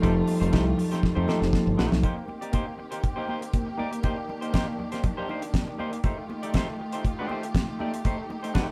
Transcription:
Already playing: D#3 F3 G3 A3 D#4 F4 G4 A4
0.02 F1 F3 A3 D#4 G4 A4 C5, kick, closed hi-hat, muted conga
0.15 muted clean electric guitar stroke
0.27 muted clean electric guitar stroke, open hi-hat, muted conga
0.40 F1 A3 D#4 G4 C5, closed hi-hat
0.52 C2 A3 D#4 G4 C5, kick, snare, closed hi-hat, high conga
0.66 muted clean electric guitar stroke
0.77 muted clean electric guitar stroke, open hi-hat, low conga
0.91 A3 D#4 G4 C5, snare, closed hi-hat
1.03 muted clean electric guitar stroke, muted fingered electric bass stroke, kick, snare, muted conga, low conga
1.15 F2 A3 D#4 G4 C5
1.27 F3 A3 D#4 G4 A4 C5, snare, muted conga
1.40 F1, muted clean electric guitar stroke, snare
1.53 kick, snare, high conga
1.66 G1, muted clean electric guitar stroke
1.77 A#1 A3 D#4 G4 C5, snare, high conga
1.91 B1, muted clean electric guitar stroke, snare
2.03 D#3 A#3 C4 D#4 G4 C5, kick, closed hi-hat, muted conga
2.16 muted clean electric guitar stroke
2.28 muted clean electric guitar stroke, muted conga
2.41 A#3 D#4 G4 D5, closed hi-hat
2.52 A#3 D#4 G4 C5, kick, closed hi-hat, high conga
2.66 muted clean electric guitar stroke
2.78 muted clean electric guitar stroke
2.91 A#3 D#4 G4 C5, closed hi-hat
3.03 muted clean electric guitar stroke, kick, closed hi-hat, muted conga
3.16 A#3 D#4 G4 C5
3.28 A#3 D#4 G4 C5, muted conga
3.41 muted clean electric guitar stroke, closed hi-hat
3.53 kick, closed hi-hat, high conga
3.67 muted clean electric guitar stroke
3.77 A#3 D#4 G4 D5, high conga
3.91 muted clean electric guitar stroke, closed hi-hat
4.03 A#3 D4 D#4 G4 C5, kick, closed hi-hat, muted conga
4.17 muted clean electric guitar stroke
4.29 muted clean electric guitar stroke, muted conga
4.41 A#3 D#4 G4 C5, closed hi-hat
4.53 A#3 D#4 G4 C5, kick, snare, closed hi-hat, high conga
4.67 muted clean electric guitar stroke
4.78 muted clean electric guitar stroke, low conga
4.92 A#3 D#4 G4 C5, snare, closed hi-hat
5.04 kick, closed hi-hat, muted conga, low conga
5.17 A#3 D#4 G4 C5
5.29 A#3 D#4 G4 C5, muted conga
5.42 muted clean electric guitar stroke, closed hi-hat
5.54 kick, snare, closed hi-hat, high conga
5.68 muted clean electric guitar stroke
5.78 A#3 D#4 G4 C5, high conga
5.92 muted clean electric guitar stroke, closed hi-hat
6.04 A3 D#4 F4 G4 C5, kick, closed hi-hat, muted conga
6.17 muted clean electric guitar stroke
6.29 muted clean electric guitar stroke, muted conga
6.43 A3 D#4 G4 D5, closed hi-hat
6.53 A3 D#4 G4 C5, kick, snare, closed hi-hat, high conga
6.68 muted clean electric guitar stroke
6.80 muted clean electric guitar stroke
6.92 A3 D#4 G4 C5, closed hi-hat
7.04 muted clean electric guitar stroke, kick, closed hi-hat, muted conga
7.19 A3 D#4 G4 C5
7.29 A3 D#4 G4 C5, muted conga
7.43 muted clean electric guitar stroke, closed hi-hat
7.55 kick, snare, closed hi-hat, high conga
7.68 muted clean electric guitar stroke
7.79 A3 D#4 G4 D5, high conga
7.94 muted clean electric guitar stroke, closed hi-hat
8.04 A3 D#4 G4 C5, kick, closed hi-hat, muted conga
8.18 muted clean electric guitar stroke
8.30 muted clean electric guitar stroke, muted conga
8.43 A3 D#4 G4 C5, closed hi-hat
8.54 A3 D#4 G4 C5, kick, snare, closed hi-hat, high conga
8.67 muted clean electric guitar stroke

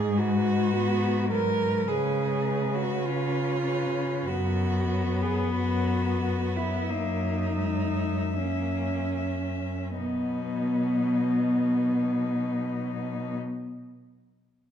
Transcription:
Already playing: G#2 G#3 G#4
0.17 F#4 B4
0.72 G#2 B3
1.30 F#3 A#4 B4
1.87 C#3 G#3 G#4 B4
2.45 B4
2.75 F#4
3.04 C#3 C#4 F4
3.65 B4
4.26 F#2 B3 F#4
4.90 B4
5.22 G#4
5.53 F#2 F#4
6.21 B4
6.56 E4
6.88 F#2 A#3 D#4 E5
7.59 G#3 E5
8.34 F#2 A#3 C#4
9.17 E5
9.98 B2 F#3 B3 D#4

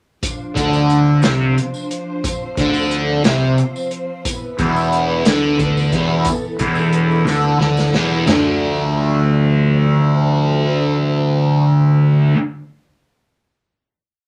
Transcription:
0.21 F3 D4 C5, kick, closed hi-hat, tambourine
0.55 D2 D3, kick, closed hi-hat, tambourine
0.73 tambourine
0.90 closed hi-hat
1.22 C2 C3, snare, closed hi-hat, tambourine
1.58 closed hi-hat
1.74 tambourine
1.91 closed hi-hat
2.23 C4, kick, closed hi-hat, tambourine
2.57 D2 D3, kick, closed hi-hat, tambourine
2.74 tambourine
2.91 closed hi-hat
3.24 C2 C3, snare, closed hi-hat, tambourine
3.58 closed hi-hat
3.76 tambourine
3.91 closed hi-hat
4.25 E3 B3 B4, kick, closed hi-hat, tambourine
4.58 E1 E2, kick, closed hi-hat, tambourine
4.76 tambourine
4.92 closed hi-hat
5.25 D2 D3, snare, closed hi-hat, tambourine
5.59 D2 D3, kick, closed hi-hat
5.77 tambourine
5.92 E1 E2, kick, closed hi-hat
6.25 A4, kick, closed hi-hat, tambourine
6.44 tambourine
6.59 E1 E2, kick, closed hi-hat, tambourine
6.75 tambourine
6.93 closed hi-hat
7.11 tambourine
7.25 D2 D3, snare, tambourine
7.58 D2 D3, snare
7.77 snare, tambourine
7.93 E1 E2, snare
8.10 tambourine
8.25 D2 D3 F3 A3 D4 C5, snare, floor tom, tambourine, crash
8.30 D4

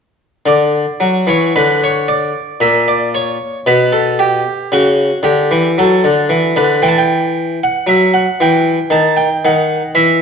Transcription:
0.46 D3 D5
1.00 F#3
1.27 E3 C#5
1.56 D3 B4
1.84 C#5
2.08 D5
2.60 A#2 E5
2.88 D5
3.15 C#5
3.66 B2 B4
3.92 A4
4.19 G4
4.72 C#3 F#4
5.23 D3 G4
5.51 E3
5.78 F#3 A4
6.04 D3
6.29 E3
6.56 D3 B4
6.82 E3 G5
6.88 A5
6.98 G5
7.63 F#5
7.87 F#3 E5
8.14 F#5
8.40 E3 G5
8.90 D#3 A5
9.16 G5
9.45 D#3 F#5
9.95 E3 E5

